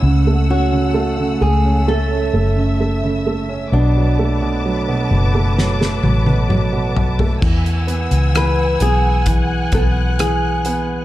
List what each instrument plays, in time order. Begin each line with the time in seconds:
Already playing: string section E6
0.02 fingered electric bass C#2, grand piano C#3, string section A3 F#5
0.27 grand piano A3
0.50 grand piano C#4, nylon-string guitar F#4
0.73 grand piano C#3
0.94 grand piano A3
1.18 grand piano C#3
1.41 fingered electric bass C#2, grand piano A3, nylon-string guitar G#4
1.65 grand piano C#4
1.88 grand piano A3, nylon-string guitar A4, string section E5
2.11 grand piano C#4
2.33 fingered electric bass F#1, grand piano A3
2.56 grand piano C#3
2.80 grand piano A3
3.04 grand piano C#3
3.27 grand piano A3
3.49 grand piano C#4
3.72 fingered electric bass B1, grand piano B2, nylon-string guitar D4, string section B4 A5 D6
3.97 grand piano F#3
4.19 grand piano A3
4.42 grand piano B2
4.65 grand piano F#3
4.88 grand piano B2
5.11 fingered electric bass F#1, grand piano F#3
5.35 grand piano A3
5.58 grand piano F#3, snare
5.81 grand piano A3, snare
6.03 fingered electric bass A1, grand piano F#3, high tom
6.26 grand piano B2, high tom
6.49 grand piano F#3, mid tom
6.73 grand piano B2
6.96 grand piano F#3, floor tom
7.19 grand piano A3, floor tom
7.41 fingered electric bass E2, grand piano E3, string section F#5 G#5 E6, kick, crash
7.66 closed hi-hat
7.87 grand piano B3, closed hi-hat
8.11 fingered electric bass C#2, closed hi-hat
8.34 grand piano E3, nylon-string guitar B4, cross-stick, closed hi-hat
8.80 fingered electric bass B1, grand piano B3, nylon-string guitar G#4, closed hi-hat
9.26 grand piano E3, string section F#6, kick, closed hi-hat
9.72 fingered electric bass B1, grand piano B3, nylon-string guitar A4, kick, closed hi-hat
10.19 grand piano E3, nylon-string guitar G#4, cross-stick, closed hi-hat
10.65 grand piano B3, closed hi-hat